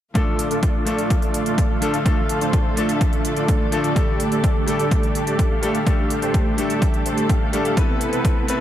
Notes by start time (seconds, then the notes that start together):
0.14 D3 F3 A3 D4 F4 A4 D5, kick, closed hi-hat
0.39 closed hi-hat
0.51 A3 D4 F4 A4 D5, closed hi-hat
0.63 kick, closed hi-hat
0.85 F3 A3 D4 F4 A4 D5, closed hi-hat
0.98 closed hi-hat
1.10 kick, closed hi-hat
1.22 closed hi-hat
1.34 closed hi-hat
1.46 A3 D4 F4 A4 D5, closed hi-hat
1.58 kick, closed hi-hat
1.70 A3 D4 F4 A4 F5
1.81 F3 A3 D4 A4, closed hi-hat
1.94 closed hi-hat
2.04 F3 A3 D4 F4 A4 F5, kick, closed hi-hat
2.29 closed hi-hat
2.41 A3 D4 F4 A4 C5, closed hi-hat
2.53 kick, closed hi-hat
2.76 F3 A3 D4 F4 A4 E5, closed hi-hat
2.89 closed hi-hat
3.01 kick, closed hi-hat
3.13 closed hi-hat
3.25 closed hi-hat
3.37 A3 D4 F4 A4 D5, closed hi-hat
3.48 kick, closed hi-hat
3.60 A3 D4 F4 A4 D5
3.72 F3 A3 D4 A4, closed hi-hat
3.84 closed hi-hat
3.95 G3 A3 D4 G4 A4 D5, kick, closed hi-hat
4.20 closed hi-hat
4.32 A3 D4 G4 A4 D5, closed hi-hat
4.44 kick, closed hi-hat
4.66 G3 A3 D4 G4 A4 D5, closed hi-hat
4.79 closed hi-hat
4.91 kick, closed hi-hat
5.03 closed hi-hat
5.15 closed hi-hat
5.27 A3 D4 G4 A4 D5, closed hi-hat
5.39 kick, closed hi-hat
5.51 A3 D4 G4 A4 F5
5.62 G3 A3 D4 A4, closed hi-hat
5.75 closed hi-hat
5.85 G3 A3 D4 G4 A4 F5, kick, closed hi-hat
6.10 closed hi-hat
6.22 A3 D4 G4 A4 C5, closed hi-hat
6.34 kick, closed hi-hat
6.57 G3 A3 D4 G4 A4 E5, closed hi-hat
6.70 closed hi-hat
6.82 kick, closed hi-hat
6.94 closed hi-hat
7.06 A3 D4 G4 A4 C5, closed hi-hat
7.18 closed hi-hat
7.29 A3 D4 G4 A4 F5, kick, closed hi-hat
7.53 G3 A3 D4 G4 A4 F5, closed hi-hat
7.65 closed hi-hat
7.76 C3 A3 B3 C4 E4 A4 B4, kick, closed hi-hat
8.01 closed hi-hat
8.13 B3 C4 E4 A4 B4, closed hi-hat
8.25 kick, closed hi-hat
8.47 A3 B3 C4 E4 A4 B4, closed hi-hat